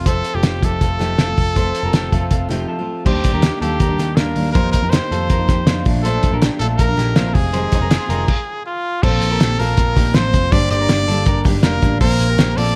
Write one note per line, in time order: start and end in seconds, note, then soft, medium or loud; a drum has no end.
0.05 0.21 F1 medium
0.05 0.34 F3 soft
0.05 0.35 A3 medium
0.05 0.34 C4 medium
0.05 0.33 F4 medium
0.05 0.36 A4 loud
0.05 0.33 A4 medium
0.05 0.33 C5 medium
0.05 kick medium
0.05 closed hi-hat medium
0.24 closed hi-hat medium
0.34 0.42 F1 medium
0.34 0.60 F3 soft
0.34 0.62 A3 soft
0.34 0.63 C4 medium
0.34 0.63 F4 medium
0.34 0.42 F4 medium
0.34 0.66 G4 medium
0.34 0.44 A4 medium
0.43 0.60 F1 medium
0.43 0.63 C4 medium
0.43 0.63 F4 medium
0.43 snare loud
0.43 clap medium
0.43 closed hi-hat medium
0.61 0.78 F1 medium
0.61 0.98 F3 medium
0.61 0.98 A3 medium
0.61 0.99 C4 medium
0.61 0.82 D#4 medium
0.61 0.99 F4 medium
0.61 0.81 G4 medium
0.61 2.69 A4 loud
0.61 kick medium
0.61 closed hi-hat medium
0.81 0.97 F1 loud
0.81 1.00 F4 medium
0.81 1.00 A4 medium
0.81 kick medium
0.81 closed hi-hat medium
0.98 1.15 F1 medium
0.98 1.27 F2 medium
0.98 1.28 C3 medium
0.98 1.28 F3 medium
0.98 1.28 A3 medium
0.98 1.27 C4 medium
0.98 1.18 D#4 medium
0.98 1.26 F4 medium
0.98 1.19 G4 medium
0.98 snare soft
0.98 clap medium
0.98 closed hi-hat medium
1.18 1.34 F1 medium
1.18 1.55 C4 soft
1.18 1.54 F4 medium
1.18 snare loud
1.18 clap medium
1.18 closed hi-hat medium
1.27 1.54 F3 soft
1.27 1.55 A3 medium
1.27 1.56 C4 medium
1.27 1.56 F4 medium
1.38 1.53 F1 medium
1.38 kick medium
1.38 open hi-hat medium
1.55 1.71 F1 loud
1.55 1.84 F3 medium
1.55 1.84 A3 medium
1.55 1.84 C4 medium
1.55 1.83 F4 medium
1.55 1.83 A4 medium
1.55 1.83 C5 medium
1.55 kick loud
1.55 closed hi-hat medium
1.75 closed hi-hat medium
1.83 1.91 F1 medium
1.83 2.10 F3 soft
1.83 2.12 A3 medium
1.83 2.13 C4 medium
1.83 2.12 F4 medium
1.83 1.92 G4 medium
1.83 1.94 A#4 medium
1.93 2.09 F1 medium
1.93 2.13 C4 medium
1.93 2.12 G4 medium
1.93 snare loud
1.93 clap medium
1.93 closed hi-hat medium
2.12 2.28 F1 medium
2.12 2.49 F3 medium
2.12 2.49 A3 medium
2.12 2.49 C4 medium
2.12 2.30 F4 medium
2.12 2.49 F4 medium
2.12 2.31 A4 medium
2.12 kick medium
2.12 closed hi-hat medium
2.31 2.46 F1 medium
2.31 2.50 C4 medium
2.31 2.50 F4 medium
2.31 kick medium
2.31 closed hi-hat medium
2.49 2.65 F1 medium
2.49 2.78 F2 medium
2.49 2.78 C3 medium
2.49 2.78 F3 medium
2.49 2.78 A3 medium
2.49 2.78 C4 medium
2.49 2.69 D#4 medium
2.49 2.77 F4 medium
2.49 2.69 G4 medium
2.49 snare soft
2.49 clap medium
2.49 closed hi-hat medium
2.68 3.04 F4 soft
2.68 3.04 A4 medium
2.79 3.06 F3 soft
2.79 3.07 A3 soft
2.79 3.07 C4 medium
2.79 3.06 F4 medium
3.05 3.21 D#2 loud
3.05 3.34 D#3 medium
3.05 3.34 G3 medium
3.05 3.34 A#3 medium
3.05 3.32 D4 medium
3.05 3.58 G4 medium
3.05 3.33 G4 medium
3.05 3.32 C5 medium
3.05 kick loud
3.05 crash loud
3.24 kick medium
3.24 closed hi-hat medium
3.33 3.49 D#2 medium
3.33 3.61 G3 soft
3.33 3.62 A#3 soft
3.33 3.61 D4 medium
3.33 3.42 G4 medium
3.33 3.43 A#4 medium
3.42 3.63 D#4 medium
3.42 3.62 G4 medium
3.42 snare loud
3.42 clap medium
3.42 closed hi-hat medium
3.61 3.77 D#2 medium
3.61 3.90 D#3 medium
3.61 3.90 G3 medium
3.61 3.89 A#3 medium
3.61 3.87 D4 medium
3.61 3.81 F4 medium
3.61 4.17 G4 medium
3.61 3.80 A4 medium
3.61 closed hi-hat medium
3.80 3.96 D#2 loud
3.80 3.98 G4 medium
3.80 3.99 A#4 medium
3.80 kick medium
3.80 closed hi-hat medium
3.88 4.17 G3 soft
3.88 4.18 A#3 soft
3.88 4.17 D4 medium
3.99 4.14 D#2 medium
3.99 4.18 D#4 medium
3.99 4.17 G4 medium
3.99 snare soft
3.99 clap medium
3.99 closed hi-hat medium
4.16 4.33 D#2 medium
4.16 4.35 D#3 medium
4.16 4.36 G3 medium
4.16 4.37 A#3 medium
4.16 4.53 D4 soft
4.16 4.37 D4 medium
4.16 4.53 F4 medium
4.16 4.52 A#4 medium
4.16 snare loud
4.16 clap medium
4.16 closed hi-hat medium
4.36 4.52 D#2 medium
4.36 4.55 D#3 medium
4.36 4.56 G3 medium
4.36 4.55 A#3 medium
4.36 4.56 D4 medium
4.36 open hi-hat medium
4.52 4.83 F2 medium
4.52 4.71 F2 loud
4.52 4.83 C3 medium
4.52 4.84 D#3 medium
4.52 4.82 F4 medium
4.52 4.71 A#4 loud
4.52 4.82 C5 loud
4.52 kick loud
4.52 closed hi-hat medium
4.56 4.84 A#3 medium
4.56 4.82 D#4 medium
4.71 4.91 A#4 loud
4.71 kick medium
4.71 closed hi-hat medium
4.83 4.98 F2 medium
4.83 5.11 D#3 soft
4.83 5.12 A#3 medium
4.83 5.11 D#4 soft
4.83 4.92 G4 medium
4.83 4.93 A#4 medium
4.90 5.12 G4 medium
4.90 5.85 C5 loud
4.90 snare loud
4.90 clap medium
4.90 closed hi-hat medium
4.94 5.12 D#4 medium
5.11 5.27 F2 loud
5.11 5.39 C3 medium
5.11 5.40 D#3 medium
5.11 5.39 A#3 medium
5.11 5.38 D#4 medium
5.11 5.30 F4 medium
5.11 5.30 A4 medium
5.11 closed hi-hat medium
5.30 5.45 F2 loud
5.30 5.49 F4 medium
5.30 5.49 A#4 medium
5.30 kick medium
5.30 closed hi-hat medium
5.39 5.66 D#3 soft
5.39 5.67 A#3 medium
5.39 5.67 D#4 medium
5.49 5.64 F2 medium
5.49 5.68 D#4 medium
5.49 5.67 G4 medium
5.49 kick medium
5.49 snare soft
5.49 clap medium
5.49 closed hi-hat medium
5.66 5.82 F2 loud
5.66 5.84 C3 medium
5.66 5.85 D#3 medium
5.66 5.86 A#3 medium
5.66 6.03 D4 medium
5.66 5.87 D#4 medium
5.66 6.02 F4 medium
5.66 snare loud
5.66 clap medium
5.66 closed hi-hat medium
5.84 6.17 A#1 loud
5.84 6.03 A#2 medium
5.84 6.03 F3 medium
5.84 6.04 A3 medium
5.84 6.05 D4 medium
5.84 kick loud
5.84 open hi-hat medium
6.02 6.32 A#2 medium
6.02 6.33 F3 medium
6.02 6.32 A3 medium
6.02 6.31 D4 medium
6.02 6.38 A4 medium
6.02 6.32 A4 medium
6.02 6.31 C5 medium
6.02 closed hi-hat medium
6.23 kick medium
6.23 closed hi-hat medium
6.32 6.48 A#1 medium
6.32 6.60 F3 soft
6.32 6.61 A3 soft
6.32 6.60 D4 medium
6.32 6.41 G4 medium
6.32 6.42 A#4 medium
6.42 6.61 D4 medium
6.42 6.61 G4 medium
6.42 snare loud
6.42 clap loud
6.42 closed hi-hat loud
6.59 6.76 A#1 medium
6.59 6.88 A#2 medium
6.59 6.89 F3 medium
6.59 6.88 A3 medium
6.59 6.87 D4 medium
6.59 6.79 F4 medium
6.59 6.68 A4 medium
6.59 6.79 A4 medium
6.59 closed hi-hat medium
6.77 6.95 A#1 loud
6.77 6.97 F4 medium
6.77 7.35 A#4 loud
6.77 6.98 A#4 medium
6.77 kick loud
6.77 closed hi-hat medium
6.88 7.16 F3 soft
6.88 7.16 A3 medium
6.88 7.16 D4 medium
6.97 7.13 A#1 medium
6.97 7.17 D#4 medium
6.97 7.16 G4 medium
6.97 snare soft
6.97 clap medium
6.97 closed hi-hat medium
7.16 7.32 A#1 medium
7.16 7.34 A#2 medium
7.16 7.35 F3 medium
7.16 7.36 A3 medium
7.16 7.52 C4 medium
7.16 7.36 D4 medium
7.16 7.52 F4 medium
7.16 snare loud
7.16 clap medium
7.16 closed hi-hat medium
7.34 7.66 F1 medium
7.34 7.53 C3 medium
7.34 7.53 D#3 medium
7.34 7.54 G#3 medium
7.34 7.54 C4 medium
7.34 8.65 G#4 medium
7.34 kick loud
7.34 open hi-hat medium
7.53 7.82 F2 medium
7.53 7.82 C3 medium
7.53 7.82 D#3 medium
7.53 7.82 G#3 medium
7.53 7.81 C4 medium
7.53 7.80 G#4 medium
7.53 7.80 C5 loud
7.53 closed hi-hat medium
7.72 7.81 D#4 medium
7.72 kick medium
7.72 closed hi-hat medium
7.81 7.97 F1 medium
7.81 8.09 D#3 medium
7.81 8.10 G#3 medium
7.81 8.10 C4 medium
7.81 7.91 G4 medium
7.81 7.90 A#4 medium
7.90 8.10 F4 medium
7.90 8.27 F4 loud
7.90 8.09 G#4 medium
7.90 snare loud
7.90 clap loud
7.90 closed hi-hat loud
8.09 8.25 F1 loud
8.09 8.28 C3 medium
8.09 8.29 D#3 medium
8.09 8.29 G#3 medium
8.09 8.29 C4 medium
8.09 8.29 G4 medium
8.09 8.28 A#4 medium
8.09 closed hi-hat medium
8.28 kick loud
8.28 crash medium
8.66 9.04 F4 loud
9.03 9.19 A#1 loud
9.03 9.57 A#2 medium
9.03 9.58 F3 medium
9.03 9.60 A#3 medium
9.03 9.60 C4 medium
9.03 9.30 F4 medium
9.03 9.61 A4 loud
9.03 9.29 C5 loud
9.03 kick loud
9.03 crash loud
9.21 9.37 A#1 loud
9.21 hi-hat pedal medium
9.21 open hi-hat medium
9.31 9.39 G4 medium
9.31 9.40 A#4 medium
9.40 9.56 A#1 loud
9.40 9.59 C4 medium
9.40 9.59 G4 medium
9.40 snare loud
9.40 clap loud
9.40 hi-hat pedal medium
9.40 open hi-hat loud
9.59 9.75 A#1 loud
9.59 9.95 A#2 medium
9.59 9.96 F3 medium
9.59 9.98 A#3 medium
9.59 9.97 C4 medium
9.59 9.78 F4 medium
9.59 9.78 A4 medium
9.59 10.17 A#4 loud
9.59 hi-hat pedal medium
9.59 open hi-hat medium
9.77 9.93 A#1 loud
9.77 9.97 F4 medium
9.77 9.97 A#4 medium
9.77 kick medium
9.77 hi-hat pedal medium
9.77 open hi-hat loud
9.96 10.12 A#1 medium
9.96 10.13 A#2 medium
9.96 10.14 F3 medium
9.96 10.15 A#3 medium
9.96 10.16 C4 medium
9.96 10.16 D#4 medium
9.96 10.15 G4 medium
9.96 kick loud
9.96 snare soft
9.96 clap medium
9.96 hi-hat pedal medium
9.96 open hi-hat medium
10.14 10.30 A1 medium
10.14 10.31 A#2 medium
10.14 10.32 F3 medium
10.14 10.33 A#3 medium
10.14 10.51 C4 medium
10.14 10.34 C4 medium
10.14 10.50 F4 medium
10.14 10.53 C5 loud
10.14 snare loud
10.14 clap medium
10.14 hi-hat pedal medium
10.14 open hi-hat medium
10.33 10.52 F1 medium
10.33 10.52 A#2 medium
10.33 10.52 F3 medium
10.33 10.52 A#3 medium
10.33 10.53 C4 medium
10.33 kick medium
10.33 hi-hat pedal medium
10.33 open hi-hat medium
10.52 10.67 G1 loud
10.52 11.08 G2 medium
10.52 11.07 D3 medium
10.52 11.08 G3 loud
10.52 11.10 A#3 medium
10.52 11.09 D4 loud
10.52 10.79 G4 medium
10.52 10.79 C5 loud
10.52 10.70 D5 loud
10.52 kick loud
10.52 hi-hat pedal medium
10.52 open hi-hat loud
10.70 10.86 G1 loud
10.70 11.42 D5 loud
10.70 hi-hat pedal medium
10.70 open hi-hat medium
10.81 10.89 G4 medium
10.81 10.90 A#4 medium
10.89 11.05 G1 loud
10.89 11.09 D4 medium
10.89 11.08 G4 medium
10.89 snare loud
10.89 clap loud
10.89 hi-hat pedal medium
10.89 open hi-hat loud
11.08 11.23 G1 loud
11.08 11.44 D3 medium
11.08 11.45 G3 medium
11.08 11.47 A#3 medium
11.08 11.47 D4 medium
11.08 11.27 F4 medium
11.08 11.26 A4 loud
11.08 hi-hat pedal medium
11.08 open hi-hat medium
11.26 11.42 G1 loud
11.26 11.44 G4 medium
11.26 11.45 A#4 medium
11.26 kick loud
11.26 hi-hat pedal medium
11.26 open hi-hat loud
11.45 11.61 G1 loud
11.45 11.62 D3 medium
11.45 11.64 G3 medium
11.45 11.65 A#3 medium
11.45 11.65 D4 medium
11.45 11.65 D#4 medium
11.45 11.64 G4 medium
11.45 kick loud
11.45 clap medium
11.45 hi-hat pedal medium
11.45 open hi-hat medium
11.63 11.79 F1 medium
11.63 11.81 D3 medium
11.63 11.82 G3 medium
11.63 11.83 A#3 medium
11.63 12.00 D4 medium
11.63 11.84 D4 medium
11.63 11.99 F4 medium
11.63 11.98 A#4 loud
11.63 snare loud
11.63 clap medium
11.63 hi-hat pedal medium
11.63 open hi-hat loud
11.82 11.98 A1 medium
11.82 12.00 D3 medium
11.82 12.01 G3 medium
11.82 12.00 A#3 medium
11.82 12.02 D4 medium
11.82 kick loud
11.82 hi-hat pedal medium
11.82 open hi-hat medium
12.00 12.16 A#1 loud
12.00 12.54 A#2 medium
12.00 12.56 F3 medium
12.00 12.57 A#3 medium
12.00 12.58 C4 medium
12.00 12.28 F4 medium
12.00 12.58 A#4 loud
12.00 12.28 C5 loud
12.00 kick loud
12.00 hi-hat pedal medium
12.00 open hi-hat loud
12.19 12.35 A#1 loud
12.19 hi-hat pedal medium
12.19 open hi-hat medium
12.30 12.37 G4 medium
12.30 12.39 A#4 medium
12.38 12.54 A#1 loud
12.38 12.58 C4 medium
12.38 12.57 G4 medium
12.38 snare loud
12.38 clap loud
12.38 hi-hat pedal medium
12.38 open hi-hat loud
12.56 12.73 A#1 loud
12.56 12.76 A#2 medium
12.56 12.76 F3 medium
12.56 12.76 A#3 medium
12.56 12.76 C4 medium
12.56 12.75 F4 medium
12.56 12.75 A4 medium
12.56 12.76 D5 loud
12.56 hi-hat pedal medium
12.56 open hi-hat medium